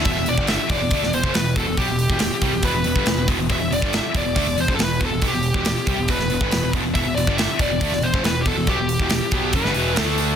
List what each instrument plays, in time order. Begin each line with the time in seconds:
0.05 picked electric bass E1, distorted electric guitar E2 B2, lead electric guitar E5, kick, open hi-hat
0.18 picked electric bass E1, distorted electric guitar E2 B2
0.26 picked electric bass E1, distorted electric guitar E2 B2, lead electric guitar D5, open hi-hat
0.38 picked electric bass G1, distorted electric guitar G2 D3 G3, kick
0.47 lead electric guitar E5, snare, open hi-hat
0.61 muted picked electric bass stroke, muted distorted electric guitar stroke
0.69 picked electric bass E1, distorted electric guitar E2 B2, lead electric guitar D5, kick, open hi-hat
0.82 picked electric bass E1, distorted electric guitar E2 B2
0.91 picked electric bass D2, distorted electric guitar D3 A3, kick, open hi-hat
1.03 picked electric bass E1, distorted electric guitar E2 B2, snare
1.13 picked electric bass E1, distorted electric guitar E2 B2, lead electric guitar C5, open hi-hat
1.23 picked electric bass F#1, distorted electric guitar F#2 C#3, kick
1.34 picked electric bass E1, distorted electric guitar E2 B2, lead electric guitar B4, snare, open hi-hat
1.56 picked electric bass E1, distorted electric guitar E2 B2, lead electric guitar A4, kick, open hi-hat
1.68 picked electric bass E1, distorted electric guitar E2 B2
1.77 picked electric bass B1, distorted electric guitar B2 F#3, lead electric guitar G4, kick, open hi-hat
1.90 picked electric bass E1, distorted electric guitar E2 B2
1.99 open hi-hat
2.09 picked electric bass E1, distorted electric guitar E2 B2, kick
2.19 picked electric bass E1, distorted electric guitar E2 B2, snare, open hi-hat
2.31 muted picked electric bass stroke, muted distorted electric guitar stroke
2.42 picked electric bass C2, distorted electric guitar C3 G3, kick, open hi-hat
2.53 picked electric bass E1, distorted electric guitar E2 B2
2.63 picked electric bass E1, distorted electric guitar E2 B2, lead electric guitar B4, kick, open hi-hat
2.73 picked electric bass E1, distorted electric guitar E2 B2
2.84 picked electric bass E1, distorted electric guitar E2 B2, open hi-hat
2.96 picked electric bass G1, distorted electric guitar G2 D3, kick
3.05 picked electric bass E1, distorted electric guitar E2 B2, snare, open hi-hat
3.16 picked electric bass E1, distorted electric guitar E2 B2
3.28 picked electric bass E1, distorted electric guitar E2 B2, kick, open hi-hat
3.38 picked electric bass E1, distorted electric guitar E2 B2
3.49 picked electric bass E1, distorted electric guitar E2 B2, lead electric guitar E5, kick, open hi-hat
3.60 picked electric bass E1, distorted electric guitar E2 B2
3.70 picked electric bass E1, distorted electric guitar E2 B2, lead electric guitar D5, open hi-hat
3.81 picked electric bass G1, distorted electric guitar G2 D3 G3, kick
3.93 lead electric guitar E5, snare, open hi-hat
4.03 muted picked electric bass stroke, muted distorted electric guitar stroke
4.14 picked electric bass E1, distorted electric guitar E2 B2, lead electric guitar D5, kick, open hi-hat
4.24 picked electric bass E1, distorted electric guitar E2 B2
4.36 picked electric bass D2, distorted electric guitar D3 A3, kick, open hi-hat
4.47 picked electric bass E1, distorted electric guitar E2 B2
4.58 picked electric bass E1, distorted electric guitar E2 B2, lead electric guitar C5, open hi-hat
4.68 picked electric bass F#1, distorted electric guitar F#2 C#3, kick
4.75 lead electric guitar A4
4.79 picked electric bass E1, distorted electric guitar E2 B2, snare, open hi-hat
4.83 lead electric guitar B4
5.01 picked electric bass E1, distorted electric guitar E2 B2, kick
5.06 lead electric guitar A4
5.12 picked electric bass E1, distorted electric guitar E2 B2
5.22 picked electric bass B1, distorted electric guitar B2 F#3, kick, open hi-hat
5.27 lead electric guitar G4
5.33 picked electric bass E1, distorted electric guitar E2 B2
5.43 open hi-hat
5.54 picked electric bass E1, distorted electric guitar E2 B2, kick
5.65 picked electric bass E1, distorted electric guitar E2 B2, snare, open hi-hat
5.77 muted picked electric bass stroke, muted distorted electric guitar stroke
5.87 picked electric bass C2, distorted electric guitar C3 G3, kick, open hi-hat
5.99 picked electric bass E1, distorted electric guitar E2 B2
6.08 picked electric bass E1, distorted electric guitar E2 B2, lead electric guitar B4, kick, open hi-hat
6.20 picked electric bass E1, distorted electric guitar E2 B2, snare
6.30 picked electric bass E1, distorted electric guitar E2 B2, open hi-hat
6.41 picked electric bass G1, distorted electric guitar G2 D3, kick
6.51 picked electric bass E1, distorted electric guitar E2 B2, snare, open hi-hat
6.63 picked electric bass E1, distorted electric guitar E2 B2
6.73 picked electric bass E1, distorted electric guitar E2 B2, kick, open hi-hat
6.84 picked electric bass E1, distorted electric guitar E2 B2
6.94 picked electric bass E1, distorted electric guitar E2 B2, lead electric guitar E5, kick, open hi-hat
7.05 picked electric bass E1, distorted electric guitar E2 B2
7.15 picked electric bass E1, distorted electric guitar E2 B2, lead electric guitar D5, open hi-hat
7.27 picked electric bass G1, distorted electric guitar G2 D3 G3, kick
7.38 lead electric guitar E5, snare, open hi-hat
7.50 muted distorted electric guitar stroke, muted picked electric bass stroke
7.59 picked electric bass E1, distorted electric guitar E2 B2, lead electric guitar D5, kick, open hi-hat
7.69 picked electric bass E1, distorted electric guitar E2 B2
7.81 picked electric bass D2, distorted electric guitar D3 A3, kick, open hi-hat
7.92 picked electric bass E1, distorted electric guitar E2 B2, snare
8.02 picked electric bass E1, distorted electric guitar E2 B2, lead electric guitar C5, open hi-hat
8.13 picked electric bass F#1, distorted electric guitar F#2 C#3, kick
8.23 picked electric bass E1, distorted electric guitar E2 B2, lead electric guitar B4, snare, open hi-hat
8.41 lead electric guitar G4
8.46 picked electric bass E1, distorted electric guitar E2 B2, lead electric guitar A4, kick, open hi-hat
8.56 picked electric bass E1, distorted electric guitar E2 B2
8.67 picked electric bass B1, distorted electric guitar B2 F#3, lead electric guitar G4, kick, open hi-hat
8.77 picked electric bass E1, distorted electric guitar E2 B2
8.89 open hi-hat
8.99 picked electric bass E1, distorted electric guitar E2 B2, kick
9.10 picked electric bass E1, distorted electric guitar E2 B2, snare, open hi-hat
9.23 muted distorted electric guitar stroke
9.31 picked electric bass B1, distorted electric guitar B2 F#3 B3, kick, open hi-hat
9.53 picked electric bass F#1, distorted electric guitar F#2 C#3, lead electric guitar B4, kick, open hi-hat
9.65 picked electric bass G1, distorted electric guitar G2 D3, snare
9.74 picked electric bass E1, distorted electric guitar E2 B2 E3, open hi-hat
9.96 picked electric bass D2, distorted electric guitar D3 A3 D4, snare, open hi-hat
10.02 lead electric guitar A4
10.18 open hi-hat